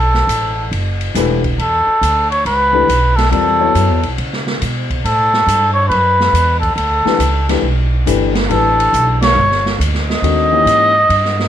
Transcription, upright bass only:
0.00 0.27 B1 medium
0.27 0.70 A1 medium
0.71 1.14 F#1 medium
1.15 1.57 E1 medium
1.58 1.85 E2 medium
1.87 muted upright bass stroke soft
2.01 2.43 D2 medium
2.45 2.87 C#2 medium
2.88 3.30 B1 medium
3.32 3.73 E2 medium
3.75 3.90 F#2 medium
3.90 4.03 E2 medium
4.03 4.17 B1 medium
4.18 4.60 C#3 medium
4.62 5.03 B2 medium
5.04 5.46 A2 medium
5.47 5.89 G2 medium
5.90 6.32 F#2 medium
6.33 6.75 E2 medium
6.76 7.03 D2 medium
7.05 muted upright bass stroke soft
7.19 7.61 C#2 medium
7.62 8.05 B1 medium
8.06 8.48 G1 medium
8.50 8.92 A1 medium
8.93 9.35 B1 medium
9.35 9.78 G1 medium
9.79 10.21 D2 medium
10.22 10.64 D#2 medium
10.65 11.08 G#2 medium
11.09 11.48 G2 medium

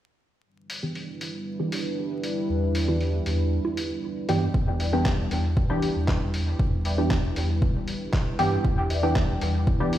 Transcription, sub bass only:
2.49 3.21 E2 medium
3.26 3.60 E2 medium
4.29 4.48 G2 medium
4.54 5.26 E2 loud
5.31 5.65 E2 loud
5.96 6.55 E2 medium
6.59 7.31 E2 loud
7.36 7.70 E2 loud
8.39 8.58 G2 medium
8.65 9.37 E2 medium
9.42 9.75 E2 medium

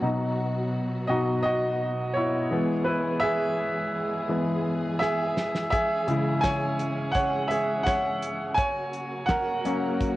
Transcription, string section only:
0.00 2.49 B2 medium
0.00 2.48 F#3 medium
0.00 5.68 B3 medium
0.00 2.48 F#4 medium
2.52 8.54 E3 medium
2.52 5.70 G#3 medium
2.52 8.54 G#4 medium
5.73 8.55 G#3 medium
5.73 8.55 C#4 medium
8.58 10.16 C#3 medium
8.58 10.16 F#3 medium
8.58 10.16 A#3 medium
8.58 10.16 F#4 medium

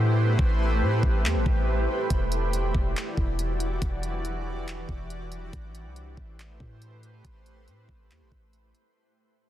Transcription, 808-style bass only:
0.00 0.36 A2 loud
0.39 0.83 A1 loud
0.82 1.02 A2 loud
1.03 1.26 A1 loud
1.25 1.37 E2 loud
1.35 1.45 A1 loud
1.46 1.87 A1 loud
2.10 2.72 E1 loud
2.75 2.95 E1 loud
3.17 3.79 E1 loud
3.82 4.85 E1 loud
4.89 5.51 E1 loud
5.53 5.87 A1 loud
5.85 6.16 C2 loud
6.17 6.59 A1 loud
6.60 7.22 A2 loud
7.25 7.69 A1 loud
7.68 7.88 A2 loud
7.89 8.12 A1 loud
8.10 8.23 E2 medium
8.21 8.31 A1 loud
8.32 8.73 A1 loud

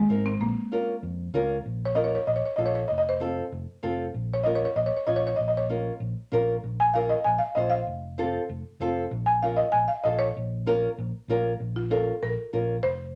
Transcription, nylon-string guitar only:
0.09 0.31 C4 medium
0.09 0.31 D#4 medium
0.09 0.31 A#4 medium
0.72 0.94 C#4 medium
0.72 0.94 F4 medium
0.72 0.94 A#4 medium
1.34 1.56 C#4 medium
1.34 1.56 F4 medium
1.34 1.56 A#4 loud
1.95 2.17 C#4 medium
1.95 2.18 F4 medium
1.95 2.18 A#4 medium
2.58 2.80 C#4 medium
2.58 2.80 F4 medium
2.58 2.80 A4 medium
3.20 3.42 C4 medium
3.20 3.43 F4 medium
3.20 3.43 A4 medium
3.83 4.05 C4 medium
3.83 4.05 F4 medium
3.83 4.05 A4 medium
4.45 4.67 C#4 medium
4.45 4.67 F4 medium
4.45 4.67 A#4 medium
5.07 5.29 C#4 medium
5.07 5.29 F4 medium
5.07 5.29 C#5 medium
5.69 5.91 C#4 medium
5.69 5.92 F4 medium
5.69 5.92 A#4 medium
6.32 6.54 C#4 medium
6.32 6.54 F4 medium
6.32 6.54 A#4 loud
6.95 7.16 C#4 medium
6.95 7.16 F4 medium
6.95 7.17 A#4 medium
7.56 7.78 C#4 medium
7.56 7.78 F4 medium
7.56 7.79 C5 medium
8.18 8.40 C4 loud
8.18 8.40 F4 medium
8.18 8.41 A4 loud
8.81 9.02 C4 medium
8.81 9.03 F4 medium
8.81 9.03 A4 medium
9.43 9.64 C#4 medium
9.43 9.65 F4 medium
9.43 9.65 A#4 medium
10.05 10.27 C#4 medium
10.05 10.27 F4 medium
10.05 10.27 A4 medium
10.66 10.88 C#4 loud
10.66 10.89 F4 medium
10.66 10.89 A#4 loud
11.29 11.51 C#4 loud
11.29 11.51 F4 medium
11.29 11.51 A#4 loud
11.90 12.12 C#4 medium
11.90 12.13 F4 medium
11.90 12.13 A#4 medium
12.53 12.75 C#4 medium
12.53 12.75 F4 medium
12.53 12.75 A#4 medium

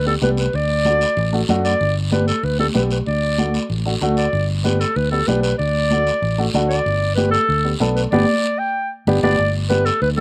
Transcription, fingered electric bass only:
0.00 0.16 D2 medium
0.22 0.47 C2 medium
0.54 1.04 D2 medium
1.17 1.42 A1 medium
1.49 1.74 F#2 medium
1.81 2.31 G1 medium
2.43 2.69 D2 medium
2.75 3.00 B1 medium
3.07 3.57 D2 medium
3.70 3.95 A1 medium
4.01 4.27 D2 medium
4.33 4.83 G1 loud
4.96 5.21 D2 medium
5.28 5.53 B1 medium
5.59 6.10 D2 medium
6.22 6.48 A1 medium
6.54 6.79 D2 medium
6.86 7.36 G1 medium
7.49 7.74 D2 medium
7.80 8.06 B1 medium
8.12 8.24 G1 medium
9.07 9.19 G1 medium
9.23 9.35 G1 medium
9.39 9.89 G1 medium
10.02 10.20 D2 loud

